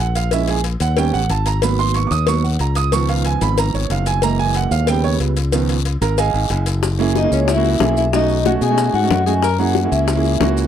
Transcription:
0.00 fingered electric bass A#1, grand piano F#5, maracas
0.15 grand piano F5, cowbell, short guiro, maracas
0.31 grand piano G#3 C#4 E4 E5, cowbell, long guiro, maracas
0.48 grand piano G#4, cowbell, maracas
0.64 cowbell, short guiro, maracas
0.80 fingered electric bass D#2, grand piano F#5, cowbell, short guiro, maracas
0.97 grand piano G3 B3 C#4 G5, cowbell, long guiro, maracas
1.13 fingered electric bass A1, grand piano F#5, maracas
1.29 fingered electric bass G#1, grand piano A5, cowbell, short guiro, maracas
1.46 grand piano A#5, cowbell, short guiro, maracas
1.62 grand piano F#3 A#3 B3 B5, cowbell, long guiro, maracas
1.79 grand piano C6, maracas
1.94 grand piano C#6, cowbell, short guiro, maracas
2.07 fingered electric bass D#2, grand piano D6, short guiro
2.12 grand piano D#6, maracas
2.27 grand piano F#3 A#3 B3 C#6, cowbell, long guiro, maracas
2.44 grand piano F#5, maracas
2.59 fingered electric bass C#2, grand piano A#5, cowbell, short guiro, maracas
2.75 grand piano D#6, cowbell, short guiro, maracas
2.92 grand piano D#3 F3 B3 C#6, cowbell, long guiro, maracas
3.09 grand piano F5, cowbell, maracas
3.25 grand piano G#5, cowbell, short guiro, maracas
3.41 fingered electric bass G#1, grand piano B5, cowbell, short guiro, maracas
3.58 grand piano A#5, cowbell, long guiro, maracas
3.74 fingered electric bass G#1, grand piano C#5, maracas
3.90 fingered electric bass F#1, grand piano F5, cowbell, short guiro, maracas
4.06 grand piano G#5, cowbell, short guiro, maracas
4.22 grand piano E3 G#3 A#3 A#5, cowbell, long guiro, maracas
4.39 grand piano G#5, maracas
4.55 grand piano F#5, cowbell, short guiro, maracas
4.71 fingered electric bass D#2, grand piano F5, short guiro, maracas
4.87 grand piano C#3 G3 B3 G5, cowbell, long guiro, maracas
5.04 grand piano C#5, maracas
5.20 fingered electric bass C#2, cowbell, short guiro, maracas
5.37 cowbell, short guiro, maracas
5.52 grand piano D#3 F3 B3, cowbell, long guiro, maracas
5.69 cowbell, maracas
5.85 cowbell, short guiro, maracas
6.01 fingered electric bass G#1, grand piano A#4 A#5, cowbell, short guiro, maracas
6.18 grand piano G#4 D#5 F5 G#5, cowbell, long guiro, maracas
6.34 fingered electric bass G#1, maracas
6.50 fingered electric bass F#1, cowbell, short guiro, maracas
6.66 cowbell, short guiro, maracas
6.83 high bongo, long guiro, maracas
6.99 grand piano A#3 C#4 E4 G#4, high bongo, maracas
7.15 tenor saxophone D#4, vibraphone D#5, high bongo, short guiro, maracas
7.23 grand piano A#3 C#4 E4 G#4
7.31 fingered electric bass C#2, tenor saxophone C#4, vibraphone C#5, short guiro, maracas
7.48 tenor saxophone E4, vibraphone E5, high bongo, long guiro, maracas
7.56 grand piano A#3 C#4 E4 F#4
7.64 high bongo, maracas
7.80 fingered electric bass B1, grand piano A#3 C#4 E4 G#4, high bongo, low bongo, short guiro, maracas
7.97 tenor saxophone E4, vibraphone E5, high bongo, short guiro, maracas
8.13 grand piano A3 C#4 D#4 F#4, tenor saxophone D#4, vibraphone D#5, high bongo, long guiro, maracas
8.29 high bongo, maracas
8.44 grand piano A3 C#4 D#4 F#4, tenor saxophone F#4, vibraphone F#5, high bongo, short guiro, maracas
8.61 fingered electric bass B2, tenor saxophone G#4, vibraphone G#5, short guiro, maracas
8.69 grand piano A3 C#4 D#4 F#4
8.78 high bongo, long guiro, maracas
8.94 fingered electric bass G#2, tenor saxophone F#4, vibraphone F#5, high bongo, maracas
9.02 grand piano A3 C#4 D#4 F#4
9.10 fingered electric bass F#2, high bongo, low bongo, short guiro, maracas
9.26 grand piano A3 C#4 D#4 F#4, tenor saxophone G#4, vibraphone G#5, high bongo, short guiro, maracas
9.43 tenor saxophone A#4, vibraphone A#5, high bongo, long guiro, maracas
9.59 grand piano A#3 C#4 E4 G#4, tenor saxophone F#4, vibraphone F#5, high bongo, maracas
9.75 high bongo, short guiro, maracas
9.83 grand piano A#3 C#4 E4 G#4
9.92 fingered electric bass C#2, tenor saxophone E4, vibraphone E5, short guiro, maracas
10.08 high bongo, long guiro, maracas
10.15 grand piano A#3 C#4 E4 G#4
10.24 high bongo, maracas
10.40 fingered electric bass C#2, grand piano A#3 C#4 E4 F#4, high bongo, low bongo, short guiro, maracas
10.57 high bongo, short guiro, maracas

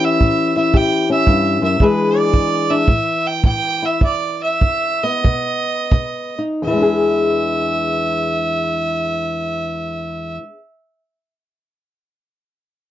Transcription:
Already playing: steel-string acoustic guitar A2 E3 C#4 E4 G4
0.05 fiddle E5
0.21 steel-string acoustic guitar A2, kick
0.57 steel-string acoustic guitar E4, fiddle E5
0.74 steel-string acoustic guitar A2 G4, fiddle G5, kick
1.10 steel-string acoustic guitar C#4, fiddle E5
1.27 steel-string acoustic guitar G2, kick
1.62 steel-string acoustic guitar F#2, fiddle E5
1.80 steel-string acoustic guitar E2 E3 G#3 D4 G#4, fiddle B4, kick
2.18 fiddle D5
2.34 steel-string acoustic guitar E2, kick
2.70 steel-string acoustic guitar D4, fiddle E5
2.88 steel-string acoustic guitar A2, kick
3.27 fiddle G5
3.44 steel-string acoustic guitar A2, fiddle G5, kick
3.82 steel-string acoustic guitar E4, fiddle E5
4.01 steel-string acoustic guitar E2, fiddle D5, kick
4.43 fiddle E5
4.61 steel-string acoustic guitar E2, kick
5.03 steel-string acoustic guitar B3, fiddle D#5
5.24 steel-string acoustic guitar B2, kick
5.92 steel-string acoustic guitar B2, kick
6.39 steel-string acoustic guitar D#4
6.62 steel-string acoustic guitar E2, fiddle E5
6.67 steel-string acoustic guitar E3
6.72 steel-string acoustic guitar G#3
6.77 steel-string acoustic guitar D4
6.82 steel-string acoustic guitar G#4

